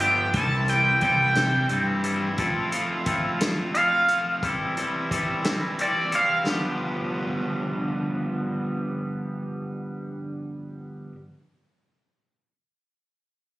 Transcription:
0.00 0.23 G1 medium
0.00 0.33 F3 medium
0.00 0.34 F3 medium
0.00 0.34 B3 medium
0.00 0.35 D4 medium
0.00 0.34 G4 medium
0.00 0.33 G5 medium
0.00 closed hi-hat medium
0.34 0.90 C2 medium
0.34 0.68 E3 medium
0.34 0.68 G3 medium
0.34 0.67 C4 loud
0.34 0.67 E4 medium
0.34 0.68 A4 medium
0.34 0.67 A5 medium
0.34 kick medium
0.34 closed hi-hat medium
0.68 1.00 E3 soft
0.68 1.01 G3 medium
0.68 1.02 C4 medium
0.68 1.02 E4 medium
0.68 1.04 A4 medium
0.68 1.02 G5 medium
0.68 closed hi-hat soft
1.01 1.31 C2 medium
1.01 1.36 E3 medium
1.01 1.36 G3 medium
1.01 1.36 C4 medium
1.01 1.35 E4 medium
1.01 1.38 A4 medium
1.01 2.34 G5 medium
1.01 kick medium
1.01 closed hi-hat soft
1.35 1.65 C3 medium
1.35 1.68 E3 medium
1.35 1.69 G3 medium
1.35 1.69 C4 medium
1.35 1.70 E4 medium
1.35 1.72 A4 medium
1.35 snare loud
1.35 closed hi-hat medium
1.69 2.27 G2 medium
1.69 2.04 E3 medium
1.69 2.03 G3 medium
1.69 2.03 C4 medium
1.69 2.02 E4 medium
1.69 2.03 A4 medium
1.69 closed hi-hat soft
2.04 2.38 E3 medium
2.04 2.38 G3 medium
2.04 2.38 C4 medium
2.04 2.38 E4 medium
2.04 2.39 A4 medium
2.04 closed hi-hat medium
2.38 2.72 F3 medium
2.38 2.72 A3 medium
2.38 2.72 C4 medium
2.38 2.74 E4 medium
2.38 2.71 F4 medium
2.38 2.71 A4 medium
2.38 kick medium
2.38 closed hi-hat medium
2.72 3.05 F3 medium
2.72 3.06 A3 medium
2.72 3.06 C4 medium
2.72 3.06 E4 medium
2.72 3.06 F4 medium
2.72 3.07 A4 medium
2.72 closed hi-hat medium
3.06 3.40 F3 medium
3.06 3.41 A3 medium
3.06 3.40 C4 medium
3.06 3.41 E4 medium
3.06 3.40 F4 medium
3.06 3.38 A4 medium
3.06 kick medium
3.06 closed hi-hat medium
3.39 3.73 F3 medium
3.39 3.73 A3 medium
3.39 3.73 C4 medium
3.39 3.74 E4 soft
3.39 3.74 F4 medium
3.39 3.76 A4 medium
3.39 snare loud
3.39 closed hi-hat medium
3.74 4.08 F3 medium
3.74 4.08 A3 medium
3.74 4.08 C4 medium
3.74 4.09 E4 medium
3.74 4.07 F4 medium
3.74 4.07 A4 medium
3.74 4.40 F5 loud
3.74 closed hi-hat medium
4.08 4.42 F3 soft
4.08 4.42 A3 medium
4.08 4.42 C4 medium
4.08 4.41 E4 soft
4.08 4.42 F4 medium
4.08 4.40 A4 medium
4.08 closed hi-hat medium
4.42 4.76 E3 medium
4.42 4.77 G3 medium
4.42 4.76 C4 medium
4.42 4.75 E4 medium
4.42 4.76 A4 medium
4.42 kick loud
4.42 closed hi-hat medium
4.77 5.09 E3 medium
4.77 5.10 G3 medium
4.77 5.10 C4 medium
4.77 5.11 E4 medium
4.77 5.12 A4 medium
4.77 closed hi-hat soft
5.11 5.44 E3 medium
5.11 5.45 G3 medium
5.11 5.44 C4 medium
5.11 5.44 E4 medium
5.11 5.44 A4 medium
5.11 kick medium
5.11 closed hi-hat medium
5.44 5.78 E3 soft
5.44 5.78 G3 medium
5.44 5.79 C4 medium
5.44 5.79 E4 medium
5.44 5.79 A4 medium
5.44 snare loud
5.44 closed hi-hat medium
5.79 6.13 E3 medium
5.79 6.12 G3 medium
5.79 6.12 C4 medium
5.79 6.11 E4 medium
5.79 6.11 A4 medium
5.79 6.13 D5 medium
5.79 closed hi-hat medium
6.12 6.47 E3 medium
6.12 6.47 G3 medium
6.12 6.47 C4 medium
6.12 6.47 E4 medium
6.12 6.44 A4 medium
6.12 6.47 F5 medium
6.12 closed hi-hat medium
6.46 11.11 G2 medium
6.46 11.12 D3 medium
6.46 11.12 F3 medium
6.46 11.13 G3 medium
6.46 11.14 B3 medium
6.46 11.14 D4 medium
6.46 11.15 G4 medium
6.46 snare medium

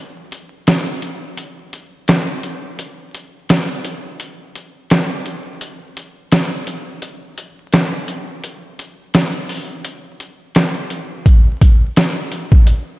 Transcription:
0.32 closed hi-hat medium
0.67 snare loud
0.67 closed hi-hat medium
1.02 closed hi-hat medium
1.37 closed hi-hat medium
1.73 closed hi-hat medium
2.08 snare loud
2.08 closed hi-hat medium
2.43 closed hi-hat medium
2.79 closed hi-hat medium
3.14 closed hi-hat medium
3.49 snare loud
3.49 closed hi-hat loud
3.85 closed hi-hat medium
4.20 closed hi-hat medium
4.55 closed hi-hat medium
4.90 snare loud
4.90 closed hi-hat medium
5.26 closed hi-hat medium
5.61 closed hi-hat medium
5.97 closed hi-hat medium
6.32 snare loud
6.32 closed hi-hat loud
6.67 closed hi-hat medium
7.02 closed hi-hat medium
7.38 closed hi-hat medium
7.73 snare loud
7.73 closed hi-hat medium
8.08 closed hi-hat medium
8.44 closed hi-hat medium
8.79 closed hi-hat medium
9.14 snare loud
9.14 closed hi-hat medium
9.49 open hi-hat soft
9.84 closed hi-hat medium
10.20 closed hi-hat medium
10.55 snare loud
10.55 closed hi-hat medium
10.90 closed hi-hat medium
11.26 kick loud
11.26 closed hi-hat medium
11.61 kick loud
11.61 closed hi-hat medium
11.96 snare loud
11.96 closed hi-hat medium
12.32 closed hi-hat medium
12.52 kick medium
12.67 closed hi-hat medium

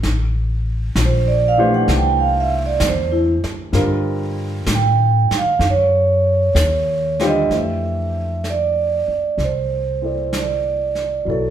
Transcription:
0.03 0.93 A1 medium
0.03 brush sweep soft
0.03 snare soft
0.95 1.85 A#1 medium
0.95 snare medium
0.95 hi-hat pedal medium
1.05 1.31 C5 medium
1.28 1.58 D5 medium
1.48 1.67 F5 loud
1.58 2.74 E3 medium
1.58 2.75 A3 medium
1.58 2.75 D4 medium
1.58 2.75 G4 medium
1.58 2.75 C5 medium
1.74 1.88 F#5 medium
1.88 2.78 C2 medium
1.88 brush sweep soft
1.88 snare soft
1.98 2.23 G5 medium
2.20 2.50 F5 medium
2.40 2.60 E5 medium
2.66 2.80 D5 medium
2.80 3.40 E2 medium
2.80 snare medium
2.80 hi-hat pedal medium
2.89 3.15 C5 medium
3.12 3.31 E4 medium
3.44 muted upright bass stroke soft
3.44 snare soft
3.72 4.64 G2 medium
3.72 4.30 D3 medium
3.72 4.31 G3 medium
3.72 4.31 C4 medium
3.72 4.31 F4 medium
3.72 4.31 A#4 medium
3.72 brush sweep soft
3.72 snare soft
4.66 5.27 A2 medium
4.66 snare medium
4.66 hi-hat pedal medium
4.75 5.29 G5 medium
5.30 muted upright bass stroke soft
5.30 snare soft
5.38 5.64 F5 medium
5.59 6.52 F#2 medium
5.59 brush sweep soft
5.59 snare soft
5.70 7.21 C#5 medium
6.55 7.47 D#2 medium
6.55 snare medium
6.55 hi-hat pedal medium
7.20 7.47 D3 medium
7.20 7.48 G3 medium
7.20 7.48 C4 medium
7.20 7.48 F4 medium
7.20 7.48 G4 medium
7.20 snare soft
7.27 7.55 D#5 loud
7.50 9.04 F2 medium
7.50 11.26 E3 soft
7.50 11.26 A3 soft
7.50 11.27 D4 soft
7.50 11.27 G4 soft
7.50 11.27 C5 soft
7.50 brush sweep soft
7.50 snare soft
7.56 8.50 E5 medium
8.44 brush sweep soft
8.44 snare soft
8.44 hi-hat pedal soft
8.50 9.44 D5 medium
9.08 muted upright bass stroke soft
9.38 11.22 C2 medium
9.38 brush sweep soft
9.38 snare soft
9.44 10.38 C5 medium
10.02 11.26 C4 soft
10.02 11.26 E4 soft
10.02 11.27 A4 soft
10.02 11.28 D5 soft
10.33 brush sweep soft
10.33 snare soft
10.33 hi-hat pedal soft
10.38 11.32 D5 medium
10.95 snare soft
11.25 11.50 B1 medium
11.25 11.50 F#3 soft
11.25 11.50 B3 soft
11.25 11.50 E4 soft
11.25 brush sweep soft
11.29 11.50 A4 soft
11.29 11.50 A4 medium
11.29 11.50 C#5 soft

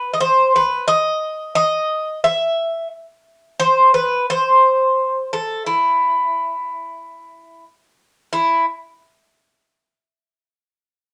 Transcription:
0.00 0.13 B4 medium
0.13 0.20 D#5 medium
0.20 0.52 C5 loud
0.56 0.86 B4 medium
0.88 1.54 D#5 loud
1.55 2.19 D#5 loud
2.24 2.87 E5 medium
3.60 3.91 C5 loud
3.94 4.25 B4 medium
4.30 5.33 C5 loud
5.33 5.62 A4 medium
5.66 7.64 E4 medium
8.33 8.65 E4 medium

